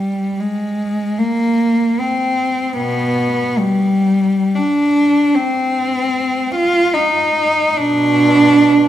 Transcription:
0.00 0.39 G3 soft
0.40 1.19 G#3 medium
1.18 1.99 A#3 medium
1.99 2.78 C4 medium
2.78 3.57 B2 soft
2.78 3.59 B3 medium
3.58 4.57 G3 medium
4.56 5.37 D4 medium
5.35 6.55 C4 medium
6.56 6.95 F4 medium
6.94 7.77 D#4 medium
7.77 8.88 B2 medium
7.77 8.88 D4 medium

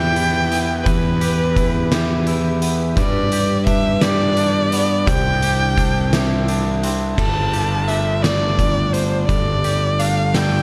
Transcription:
0.00 0.82 E2 medium
0.00 0.51 E3 medium
0.00 2.93 E3 medium
0.00 0.15 E4 soft
0.00 2.93 E4 medium
0.00 1.21 G4 medium
0.00 5.04 G4 medium
0.00 2.93 B4 medium
0.00 0.50 E5 medium
0.00 0.85 G5 medium
0.16 1.55 E4 medium
0.16 closed hi-hat soft
0.51 2.26 B3 soft
0.51 0.86 E5 medium
0.51 closed hi-hat soft
0.84 2.93 E2 medium
0.84 2.62 E3 medium
0.84 2.25 B4 medium
0.84 1.55 B4 medium
0.84 kick medium
0.84 closed hi-hat medium
1.21 1.91 G4 medium
1.21 closed hi-hat soft
1.56 2.26 E4 medium
1.56 1.91 B4 medium
1.56 kick medium
1.56 closed hi-hat medium
1.91 3.32 G4 medium
1.91 2.60 E5 medium
1.91 snare medium
1.91 closed hi-hat medium
2.27 2.97 E4 medium
2.27 closed hi-hat soft
2.61 2.97 B3 medium
2.61 2.96 E5 medium
2.61 closed hi-hat soft
2.96 5.03 G2 medium
2.96 6.47 G3 medium
2.96 5.05 B3 medium
2.96 7.14 D4 medium
2.96 3.66 B4 medium
2.96 3.63 D5 medium
2.96 kick medium
2.96 closed hi-hat medium
3.32 4.02 G4 medium
3.32 closed hi-hat medium
3.66 4.37 D4 medium
3.66 4.02 B4 medium
3.66 4.03 E5 medium
3.66 kick medium
3.66 closed hi-hat medium
4.01 5.43 G4 medium
4.01 5.09 D5 medium
4.01 4.71 D5 medium
4.01 snare medium
4.01 closed hi-hat medium
4.37 5.11 D4 medium
4.37 closed hi-hat soft
4.72 5.08 B3 medium
4.72 5.07 D5 medium
4.72 closed hi-hat medium
5.07 7.14 C2 medium
5.07 7.16 C3 medium
5.07 6.84 C3 medium
5.07 7.16 C4 medium
5.07 7.16 E4 medium
5.07 5.76 C5 medium
5.07 6.48 G5 medium
5.07 kick medium
5.07 closed hi-hat medium
5.42 6.13 G4 medium
5.42 closed hi-hat medium
5.77 6.48 D4 medium
5.77 6.12 C5 medium
5.77 kick medium
5.77 closed hi-hat medium
6.13 7.19 G4 medium
6.13 6.82 E5 medium
6.13 snare medium
6.13 closed hi-hat medium
6.48 7.19 D4 medium
6.48 closed hi-hat medium
6.83 7.19 C4 medium
6.83 7.18 E5 medium
6.83 closed hi-hat medium
7.16 9.25 G1 medium
7.16 8.58 G3 soft
7.16 10.62 G3 medium
7.16 10.62 A3 medium
7.16 10.62 D4 medium
7.16 7.87 A4 medium
7.16 7.89 A5 medium
7.16 kick medium
7.16 crash medium
7.53 9.64 G4 medium
7.53 closed hi-hat soft
7.88 8.92 D4 soft
7.88 8.23 A4 medium
7.88 8.24 E5 medium
7.88 closed hi-hat soft
8.23 10.00 A3 soft
8.23 8.95 D5 medium
8.23 8.93 D5 medium
8.23 snare medium
8.23 closed hi-hat medium
8.59 9.28 G3 medium
8.59 kick medium
8.59 closed hi-hat soft
8.93 9.99 D4 soft
8.93 9.27 C5 medium
8.93 9.29 D5 medium
8.93 closed hi-hat soft
9.27 10.62 G1 medium
9.27 10.62 G3 medium
9.27 9.98 A4 medium
9.27 10.01 D5 medium
9.27 kick medium
9.27 closed hi-hat medium
9.64 10.62 G4 medium
9.64 closed hi-hat soft
9.99 10.62 D4 medium
9.99 10.35 A4 medium
9.99 10.36 F5 medium
9.99 closed hi-hat soft
10.33 10.62 A3 soft
10.33 10.62 D5 medium
10.33 10.62 G5 medium
10.33 snare medium
10.33 closed hi-hat medium

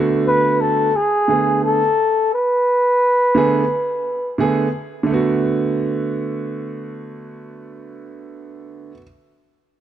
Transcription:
0.00 0.89 D3 medium
0.00 0.89 A3 medium
0.00 0.89 B3 medium
0.00 0.90 F#4 medium
0.27 0.62 B4 loud
0.61 0.97 A4 loud
0.96 1.64 G#4 loud
1.28 1.80 D3 medium
1.28 1.80 A3 medium
1.28 1.81 B3 medium
1.28 1.81 G#4 medium
1.64 2.29 A4 medium
2.33 4.36 B4 medium
3.35 3.62 D3 medium
3.35 3.63 A3 medium
3.35 3.63 B3 medium
3.35 3.63 G#4 medium
4.38 4.65 D3 medium
4.38 4.66 A3 medium
4.38 4.66 B3 medium
4.38 4.67 G#4 medium
5.03 8.91 D3 medium
5.03 8.94 A3 medium
5.10 8.98 B3 medium
5.10 9.01 F#4 medium

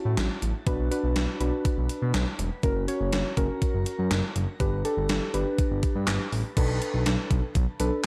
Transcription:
0.00 0.30 C#4 medium
0.00 0.30 E4 medium
0.00 0.30 F#4 medium
0.05 0.16 A2 loud
0.17 0.28 A1 loud
0.17 snare loud
0.17 closed hi-hat medium
0.42 0.53 A1 medium
0.42 closed hi-hat medium
0.67 0.77 B1 loud
0.67 0.88 D4 medium
0.67 0.88 F#4 medium
0.67 0.88 B4 medium
0.67 kick loud
0.67 closed hi-hat medium
0.79 0.90 B1 loud
0.91 1.35 D4 medium
0.91 1.35 F#4 medium
0.91 1.35 B4 medium
0.91 closed hi-hat medium
1.03 1.14 B1 loud
1.16 1.27 B1 loud
1.16 snare loud
1.16 closed hi-hat medium
1.40 1.51 B1 loud
1.40 2.27 D4 medium
1.40 2.27 F#4 medium
1.40 2.27 B4 medium
1.40 closed hi-hat medium
1.65 kick medium
1.65 closed hi-hat medium
1.77 1.88 B1 loud
1.89 closed hi-hat medium
2.02 2.13 B2 loud
2.14 2.25 B1 loud
2.14 snare loud
2.14 closed hi-hat medium
2.39 2.50 E1 medium
2.39 closed hi-hat medium
2.63 2.74 F#1 loud
2.63 2.85 C#4 medium
2.63 2.85 F#4 medium
2.63 2.85 A#4 loud
2.63 kick loud
2.63 closed hi-hat medium
2.76 2.86 F#1 medium
2.88 3.31 C#4 medium
2.88 3.31 F#4 medium
2.88 3.31 C#5 loud
2.88 closed hi-hat medium
3.00 3.11 F#1 loud
3.12 3.23 F#1 loud
3.12 snare loud
3.12 closed hi-hat medium
3.37 3.48 F#1 loud
3.37 4.24 C#4 medium
3.37 4.24 F#4 medium
3.37 4.24 A#4 medium
3.37 kick loud
3.37 closed hi-hat medium
3.62 kick medium
3.62 closed hi-hat medium
3.74 3.85 F#1 loud
3.86 closed hi-hat medium
3.99 4.09 F#2 loud
4.11 4.22 F#1 loud
4.11 snare loud
4.11 closed hi-hat medium
4.36 4.46 F#1 loud
4.36 closed hi-hat medium
4.60 4.71 G1 loud
4.60 4.82 D4 medium
4.60 4.82 G4 medium
4.60 4.82 B4 loud
4.60 kick loud
4.60 closed hi-hat medium
4.72 4.83 G1 medium
4.85 5.28 D4 medium
4.85 5.28 G4 medium
4.85 5.28 A4 medium
4.85 closed hi-hat medium
4.97 5.08 G1 loud
5.09 5.20 G1 loud
5.09 snare loud
5.09 closed hi-hat medium
5.34 5.45 G1 loud
5.34 6.21 D4 medium
5.34 6.21 G4 medium
5.34 6.21 B4 loud
5.34 closed hi-hat medium
5.58 kick medium
5.58 closed hi-hat medium
5.71 5.82 G1 medium
5.83 kick loud
5.83 closed hi-hat medium
5.95 6.06 G2 loud
6.08 6.18 G1 loud
6.08 snare loud
6.08 clap loud
6.08 closed hi-hat medium
6.32 6.43 A1 medium
6.32 open hi-hat medium
6.57 6.68 B1 loud
6.57 7.44 D4 medium
6.57 7.44 A4 medium
6.57 7.44 B4 medium
6.57 kick loud
6.57 closed hi-hat medium
6.57 crash loud
6.69 6.80 B1 medium
6.82 closed hi-hat medium
6.94 7.04 B1 loud
7.06 7.17 B1 loud
7.06 snare loud
7.06 closed hi-hat medium
7.31 7.41 B1 loud
7.31 kick loud
7.31 closed hi-hat medium
7.55 7.66 B1 loud
7.55 kick medium
7.55 closed hi-hat medium
7.80 7.91 B1 loud
7.80 8.06 D4 medium
7.80 8.06 A4 medium
7.80 8.06 B4 medium
7.80 closed hi-hat medium

